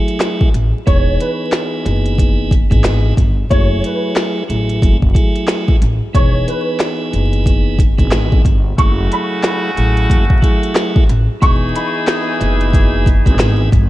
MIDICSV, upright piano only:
0, 0, Header, 1, 2, 480
1, 0, Start_track
1, 0, Tempo, 659341
1, 632, Time_signature, 4, 2, 24, 8
1, 10116, End_track
2, 0, Start_track
2, 0, Title_t, "Upright piano"
2, 0, Program_c, 0, 0
2, 630, Note_on_c, 0, 73, 111
2, 847, Note_off_c, 0, 73, 0
2, 878, Note_on_c, 0, 71, 80
2, 1234, Note_off_c, 0, 71, 0
2, 2550, Note_on_c, 0, 73, 104
2, 2767, Note_off_c, 0, 73, 0
2, 2808, Note_on_c, 0, 71, 74
2, 3160, Note_off_c, 0, 71, 0
2, 4474, Note_on_c, 0, 73, 105
2, 4689, Note_off_c, 0, 73, 0
2, 4715, Note_on_c, 0, 71, 80
2, 5073, Note_off_c, 0, 71, 0
2, 6392, Note_on_c, 0, 85, 103
2, 6608, Note_off_c, 0, 85, 0
2, 6645, Note_on_c, 0, 83, 85
2, 6998, Note_off_c, 0, 83, 0
2, 8312, Note_on_c, 0, 85, 113
2, 8528, Note_off_c, 0, 85, 0
2, 8560, Note_on_c, 0, 83, 81
2, 8915, Note_off_c, 0, 83, 0
2, 10116, End_track
0, 0, End_of_file